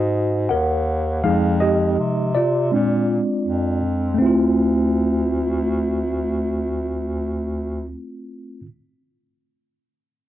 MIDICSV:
0, 0, Header, 1, 3, 480
1, 0, Start_track
1, 0, Tempo, 740741
1, 806, Time_signature, 4, 2, 24, 8
1, 6666, End_track
2, 0, Start_track
2, 0, Title_t, "Tine electric piano"
2, 0, Program_c, 0, 4
2, 0, Note_on_c, 0, 66, 76
2, 0, Note_on_c, 0, 75, 95
2, 303, Note_off_c, 0, 66, 0
2, 318, Note_on_c, 0, 78, 88
2, 329, Note_on_c, 0, 70, 75
2, 345, Note_off_c, 0, 75, 0
2, 782, Note_off_c, 0, 70, 0
2, 801, Note_on_c, 0, 53, 50
2, 802, Note_on_c, 0, 77, 85
2, 805, Note_on_c, 0, 56, 44
2, 809, Note_on_c, 0, 63, 55
2, 811, Note_on_c, 0, 68, 65
2, 817, Note_off_c, 0, 78, 0
2, 1027, Note_off_c, 0, 77, 0
2, 1032, Note_off_c, 0, 68, 0
2, 1039, Note_on_c, 0, 75, 81
2, 1048, Note_on_c, 0, 67, 65
2, 1498, Note_off_c, 0, 53, 0
2, 1500, Note_off_c, 0, 56, 0
2, 1501, Note_off_c, 0, 67, 0
2, 1502, Note_off_c, 0, 63, 0
2, 1521, Note_on_c, 0, 74, 79
2, 1530, Note_on_c, 0, 65, 66
2, 1537, Note_off_c, 0, 75, 0
2, 1759, Note_on_c, 0, 56, 46
2, 1763, Note_on_c, 0, 60, 42
2, 1769, Note_on_c, 0, 62, 49
2, 2458, Note_off_c, 0, 74, 0
2, 2462, Note_off_c, 0, 65, 0
2, 2684, Note_on_c, 0, 57, 59
2, 2697, Note_off_c, 0, 56, 0
2, 2699, Note_off_c, 0, 60, 0
2, 2702, Note_off_c, 0, 62, 0
2, 2711, Note_on_c, 0, 60, 67
2, 2736, Note_on_c, 0, 64, 56
2, 2760, Note_on_c, 0, 65, 74
2, 5571, Note_off_c, 0, 57, 0
2, 5585, Note_off_c, 0, 60, 0
2, 5597, Note_off_c, 0, 64, 0
2, 5609, Note_off_c, 0, 65, 0
2, 6666, End_track
3, 0, Start_track
3, 0, Title_t, "Bass clarinet"
3, 0, Program_c, 1, 71
3, 0, Note_on_c, 1, 44, 86
3, 303, Note_off_c, 1, 44, 0
3, 329, Note_on_c, 1, 39, 81
3, 784, Note_off_c, 1, 39, 0
3, 810, Note_on_c, 1, 41, 90
3, 1264, Note_off_c, 1, 41, 0
3, 1287, Note_on_c, 1, 48, 73
3, 1743, Note_off_c, 1, 48, 0
3, 1769, Note_on_c, 1, 46, 88
3, 2069, Note_off_c, 1, 46, 0
3, 2249, Note_on_c, 1, 41, 73
3, 2704, Note_off_c, 1, 41, 0
3, 2726, Note_on_c, 1, 38, 80
3, 5139, Note_off_c, 1, 38, 0
3, 6666, End_track
0, 0, End_of_file